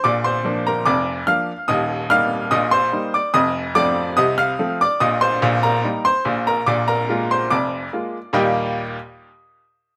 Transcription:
X:1
M:2/4
L:1/16
Q:1/4=72
K:Eb
V:1 name="Upright piano"
[dd'] [cc']2 [Bb] [dd']2 [ff']2 | [ee']2 [ff']2 [ee'] [cc']2 [dd'] | [ee']2 [dd']2 [ee'] [ff']2 [dd'] | [ee'] [cc']2 [Bb]2 [cc']2 [Bb] |
[dd'] [Bb]2 [cc'] [dd']4 | [E,,B,,G,B,EGe']2 z6 |]
V:2 name="Upright piano" clef=bass
[B,,,B,,]2 [F,B,D]2 [F,,,F,,]2 [F,B,D]2 | [E,,,E,,]2 [G,B,E]2 [B,,,B,,]2 [G,B,E]2 | [F,,,F,,]2 [F,=A,C]2 [C,,C,]2 [F,A,C]2 | [B,,,B,,]2 [B,,,B,,]2 [G,B,E]2 [B,,,B,,]2 |
[B,,,B,,]2 [A,B,F]2 [F,,,F,,]2 [A,B,F]2 | z8 |]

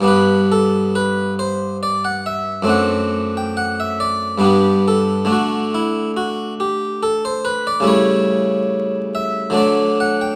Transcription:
X:1
M:3/4
L:1/16
Q:1/4=70
K:G
V:1 name="Harpsichord"
B2 A2 B2 c2 d f e2 | f3 g f e d2 G2 A2 | F2 E2 F2 G2 A c B d | ^c6 e2 d2 f g |]
V:2 name="Harpsichord"
[G,,G,B,D]12 | [F,,A,CD]8 [G,,G,B,D]4 | [D,A,D]12 | [^C,G,A,E]8 [D,F,A,D]4 |]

